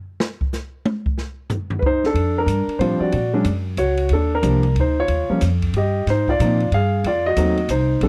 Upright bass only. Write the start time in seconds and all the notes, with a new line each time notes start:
2.14 F2
2.46 G2
2.67 muted upright bass stroke
2.79 A2
3.00 muted upright bass stroke
3.13 A#2
3.44 F#2
3.77 C#2
4.10 D#2
4.43 C2
4.75 D2
5.08 D#2
5.29 muted upright bass stroke
5.41 F2
5.73 G2
6.06 G#2
6.39 A#2
6.71 G2
7.04 F2
7.36 D#2
7.69 C2
8.01 A#1